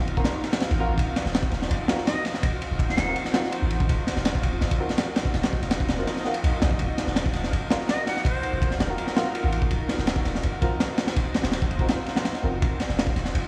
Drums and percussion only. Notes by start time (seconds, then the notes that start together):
0.07 ride
0.17 kick
0.24 snare, ride
0.43 snare, ride
0.53 snare, ride
0.60 snare, ride
0.71 snare, ride
0.98 kick, ride
1.16 snare, ride
1.26 snare
1.34 snare, ride
1.43 kick
1.51 snare, ride
1.62 snare
1.71 ride
1.88 snare, ride
1.98 snare
2.07 snare, ride
2.25 snare, ride
2.34 snare
2.43 kick, ride
2.62 ride
2.79 kick, ride
2.89 snare
2.97 snare, ride
3.16 ride
3.25 snare
3.34 snare, ride
3.44 snare
3.52 ride
3.70 ride
3.80 kick
3.89 kick, ride
4.07 snare, ride
4.16 snare
4.25 snare, ride
4.35 kick
4.43 kick, ride
4.61 snare, ride
4.71 kick, ride
4.89 snare, ride
4.98 snare, ride
5.16 snare, ride
5.25 kick
5.34 snare, ride
5.43 snare, ride
5.53 kick
5.62 snare, ride
5.71 snare, ride
5.80 kick
5.88 snare, ride
5.98 snare
6.07 snare, ride
6.17 snare
6.25 snare
6.34 ride
6.44 ride
6.62 snare, ride
6.71 kick
6.79 kick, ride
6.98 snare, ride
7.07 snare
7.16 snare, ride
7.26 kick
7.33 snare, ride
7.44 snare
7.53 ride
7.70 snare, ride
7.80 snare
7.89 snare, ride
8.07 snare, ride
8.17 snare
8.25 kick, ride
8.43 ride
8.62 kick, ride
8.71 snare
8.80 snare, ride
8.98 ride
9.07 snare
9.17 snare, ride
9.24 snare
9.35 ride
9.52 ride
9.62 kick
9.71 kick, ride
9.89 snare, ride
9.98 snare
10.07 snare, ride
10.16 kick
10.25 snare, ride
10.35 snare
10.43 ride
10.62 kick, ride
10.80 snare, ride
10.98 snare, ride
11.07 snare, ride
11.16 kick, ride
11.34 snare, ride
11.43 snare, ride
11.52 snare, ride
11.62 kick
11.71 ride
11.79 kick
11.88 snare, ride
12.06 snare, ride
12.16 snare, ride
12.25 snare, ride
12.35 snare, ride
12.62 kick, ride
12.80 snare, ride
12.89 snare
12.99 snare, ride
13.07 kick
13.16 snare, ride
13.25 snare
13.35 ride